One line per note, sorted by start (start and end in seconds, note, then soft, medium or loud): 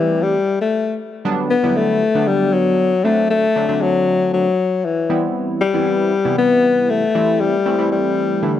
0.00 0.24 E3 medium
0.00 0.36 E3 medium
0.00 0.36 G3 medium
0.00 0.36 A3 medium
0.00 0.36 C4 medium
0.00 0.37 G4 medium
0.23 0.60 G3 loud
0.61 0.97 A3 medium
1.25 1.54 D3 loud
1.25 1.54 F#3 medium
1.25 1.54 G3 medium
1.25 1.54 B3 medium
1.25 1.54 D4 loud
1.50 1.78 B3 loud
1.63 2.02 D3 medium
1.63 2.02 F#3 medium
1.63 2.03 G3 medium
1.63 2.03 B3 medium
1.63 2.03 E4 medium
1.76 2.29 A3 loud
2.15 2.93 D3 medium
2.15 2.93 F#3 medium
2.15 2.93 B3 medium
2.15 2.93 D4 medium
2.27 2.55 G3 loud
2.53 3.06 F#3 loud
3.04 3.45 D3 medium
3.04 3.45 F#3 medium
3.04 3.30 A3 loud
3.04 3.46 A3 medium
3.04 3.46 C4 medium
3.04 3.46 D4 medium
3.30 3.83 A3 loud
3.56 3.65 D3 medium
3.56 3.66 F#3 medium
3.56 3.66 A3 medium
3.56 3.66 C4 medium
3.56 3.66 D4 medium
3.68 4.47 D3 medium
3.68 4.47 F#3 medium
3.68 4.47 A3 medium
3.68 4.47 C4 medium
3.68 4.47 D4 medium
3.82 4.33 F#3 loud
4.34 4.86 F#3 loud
4.85 5.23 E3 medium
5.09 5.61 E3 medium
5.09 5.61 G3 medium
5.09 5.61 B3 medium
5.09 5.61 C4 medium
5.09 5.61 E4 medium
5.61 6.34 G3 loud
5.74 6.13 E3 medium
5.74 6.13 G3 medium
5.74 6.13 B3 medium
5.74 6.13 C4 medium
5.74 6.13 E4 medium
6.25 7.03 C3 medium
6.25 7.03 E3 medium
6.25 7.03 G3 medium
6.25 7.03 B3 medium
6.25 7.03 E4 medium
6.38 6.91 B3 loud
6.90 7.42 A3 loud
7.15 7.56 E3 medium
7.15 7.56 G3 medium
7.15 7.56 A3 medium
7.15 7.56 C4 medium
7.15 7.56 E4 loud
7.41 7.91 G3 loud
7.66 7.76 E3 medium
7.66 7.76 G3 medium
7.66 7.76 A3 medium
7.66 7.76 C4 medium
7.66 7.76 E4 medium
7.78 8.41 E3 medium
7.78 8.43 G3 medium
7.78 8.41 A3 medium
7.78 8.43 C4 medium
7.78 8.42 E4 medium
7.92 8.60 G3 medium
8.42 8.60 D3 medium
8.42 8.60 E3 medium
8.42 8.60 A3 medium
8.42 8.60 D4 medium
8.42 8.60 E4 medium